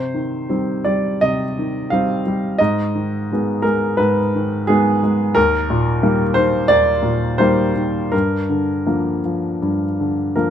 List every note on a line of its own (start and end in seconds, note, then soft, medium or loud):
0.00 1.17 C3 soft
0.00 0.84 C5 medium
0.14 0.48 D#3 soft
0.49 0.81 D#3 soft
0.49 0.81 G3 soft
0.49 0.81 C4 soft
0.85 1.42 G3 soft
0.85 1.20 D5 medium
1.21 2.56 C3 soft
1.21 1.89 D#5 medium
1.58 1.91 D#3 soft
1.90 2.22 D#3 soft
1.90 2.22 G3 soft
1.90 2.23 C4 soft
1.90 2.60 F5 medium
2.27 2.60 G3 soft
2.58 3.94 G#2 medium
2.58 3.63 D#5 medium
2.95 3.30 D#3 soft
3.32 3.61 D#3 soft
3.32 3.62 G#3 soft
3.32 3.62 B3 soft
3.62 4.19 G#3 soft
3.62 3.97 A#4 medium
3.97 5.32 G#2 soft
3.97 4.67 B4 medium
4.35 4.68 D#3 soft
4.67 4.99 D#3 soft
4.67 4.99 G#3 soft
4.67 4.99 B3 soft
4.67 5.35 G#4 medium
5.03 5.36 G#3 soft
5.35 6.65 D#2 medium
5.35 6.34 A#4 medium
5.70 6.22 A#2 medium
6.03 6.32 D#3 soft
6.03 6.32 G3 soft
6.03 6.32 A#3 medium
6.34 6.90 D#3 soft
6.34 6.68 C5 medium
6.68 8.09 D#2 soft
6.68 7.38 D5 medium
7.02 7.60 A#2 soft
7.38 7.72 D#3 soft
7.38 7.72 G3 soft
7.38 7.72 A#3 soft
7.38 8.12 C5 medium
7.75 8.12 D#3 soft
8.12 9.58 G2 soft
8.12 10.34 A#4 medium
8.49 8.85 D3 soft
8.86 9.20 D3 soft
8.86 9.20 F3 soft
8.86 9.20 A#3 soft
9.25 9.85 F3 soft
9.62 10.50 G2 soft
10.00 10.35 D3 soft
10.36 10.50 D3 soft
10.36 10.50 F3 soft
10.36 10.50 A#3 soft
10.36 10.50 A#4 medium